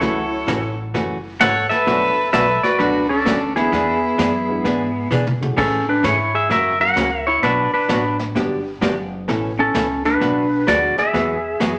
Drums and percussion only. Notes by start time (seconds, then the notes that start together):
0.02 brush sweep, kick, snare
0.48 kick, snare, hi-hat pedal
0.94 brush sweep, kick, snare
1.41 kick, snare, hi-hat pedal
1.71 snare
1.87 brush sweep, kick, snare
2.33 kick, snare, hi-hat pedal
2.64 snare
2.80 brush sweep, kick, snare
3.26 kick, snare, hi-hat pedal
3.56 snare
3.73 brush sweep, kick, snare
4.19 kick, snare, hi-hat pedal
4.65 brush sweep, kick, snare
5.11 hi-hat pedal, mid tom
5.27 mid tom
5.42 mid tom
5.58 brush sweep, kick, snare, crash
6.04 kick, snare, hi-hat pedal
6.50 brush sweep, kick, snare
6.97 kick, snare, hi-hat pedal
7.43 brush sweep, kick, snare
7.89 kick, snare, hi-hat pedal
8.19 snare
8.36 brush sweep, kick, snare
8.82 kick, snare, hi-hat pedal
9.29 brush sweep, kick, snare
9.75 kick, snare, hi-hat pedal
10.05 snare
10.21 brush sweep, kick, snare
10.68 kick, snare, hi-hat pedal
10.98 snare
11.14 brush sweep, kick, snare
11.60 kick, snare, hi-hat pedal